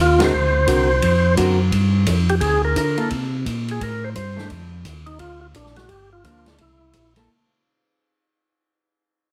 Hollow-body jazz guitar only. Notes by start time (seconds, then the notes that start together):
0.19 D3 C4 F#4 A#4
0.67 D3 C4 F#4 A#4
1.37 D3 C4 F#4 A#4
2.97 A#3 E4 A4
4.36 D#3 A3 D4
6.24 F3 A#3 D4
7.17 A#3 E4 A4